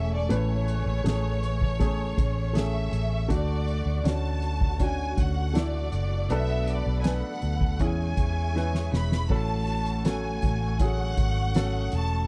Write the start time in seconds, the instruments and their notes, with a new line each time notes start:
Already playing: fingered electric bass E1, grand piano A3 C#4 G#4 A4, clean electric guitar A3 C#4 G#4, string section A3 G#5 C#6, violin section E5
0.13 violin section D5
0.29 fingered electric bass A1, clean electric guitar A2 E3 A3 C#4 G#4, grand piano A2 A3 C#4 B4, violin section C#5, closed hi-hat
0.67 clean electric guitar A3 C#4 G#4, closed hi-hat
0.86 fingered electric bass A1
1.04 fingered electric bass A1, clean electric guitar E3 A3 C#4 G#4, grand piano A3 C#4 G#4, snare, closed hi-hat
1.43 closed hi-hat
1.61 kick
1.80 grand piano A3 C#4 G#4, kick, closed hi-hat
2.17 fingered electric bass A1, clean electric guitar A3 C#4 G#4, kick, closed hi-hat
2.53 clean electric guitar E3 A3 C#4 G#4, grand piano A3 C#4 G#4, violin section E5, snare, closed hi-hat
2.92 fingered electric bass A1, clean electric guitar A3 C#4 G#4, closed hi-hat
3.28 fingered electric bass D2, clean electric guitar D3 A3 F#4, grand piano D3 A3 D4 F#4, string section F#4 F#5, kick, closed hi-hat
3.33 violin section D5
3.67 clean electric guitar A3 F#4, closed hi-hat
3.86 fingered electric bass D2
4.04 fingered electric bass D2, clean electric guitar D3 A3 C#4 F#4, grand piano C#4 D4 F#4, violin section A5, snare, closed hi-hat
4.42 closed hi-hat
4.61 kick
4.78 grand piano C#4 D4 F#4, violin section G#5, kick, closed hi-hat
5.17 fingered electric bass D2, clean electric guitar A3 C#4 F#4, violin section F#5, kick, closed hi-hat
5.53 clean electric guitar D3 A3 F#4, grand piano A3 D4 E4, snare, closed hi-hat
5.58 violin section D5
5.92 fingered electric bass F#1, clean electric guitar A3 F#4, closed hi-hat
6.29 fingered electric bass B1, clean electric guitar B2 F#3 A3 D4 F#4, grand piano B2 B3 D4 A4, string section A4 B5, closed hi-hat
6.33 violin section E5
6.67 clean electric guitar A3 D4 F#4, violin section D5, closed hi-hat
6.86 fingered electric bass B1
7.01 grand piano B3, violin section G#5, closed hi-hat
7.05 clean electric guitar F#3 A3 D4 F#4, grand piano D4 B4, violin section F#5, snare
7.42 fingered electric bass D2, closed hi-hat
7.61 kick
7.79 clean electric guitar E2 B2 E3 G#3 C#4 E4, fingered electric bass E2, grand piano E3 C#4 E4 G#4, string section G#4 E5 C#6, violin section G#5, kick, closed hi-hat
8.17 fingered electric bass E2, clean electric guitar E3 G#3 C#4 E4, kick, closed hi-hat
8.54 clean electric guitar E3 G#3 C#4 E4, grand piano C#4 E4 B4, snare
8.75 snare
8.92 fingered electric bass E1, clean electric guitar E3 G#3 C#4 E4, violin section B5, snare
9.12 snare
9.29 fingered electric bass A1, clean electric guitar A2 F#3 A3 C#4 F#4, grand piano A2 C#4 F#4 A4, string section A3 F#5 C#6, violin section A5, kick, crash
9.67 clean electric guitar A3 C#4 F#4, closed hi-hat
9.86 closed hi-hat
10.04 clean electric guitar A2 F#3 A3 C#4 F#4, grand piano C#4 F#4 A4, violin section G#5, snare, closed hi-hat
10.42 fingered electric bass A1, clean electric guitar A3 C#4 F#4, kick, closed hi-hat
10.79 clean electric guitar F#3 A3 C#4 F#4, grand piano C#4 F#4 G#4, violin section F#5, kick, closed hi-hat
11.17 fingered electric bass G#1, kick, closed hi-hat
11.54 clean electric guitar F#3 A3 C#4 F#4, grand piano C#4 F#4 A4, snare, closed hi-hat
11.92 fingered electric bass E1, clean electric guitar A3 C#4 F#4, violin section A5, closed hi-hat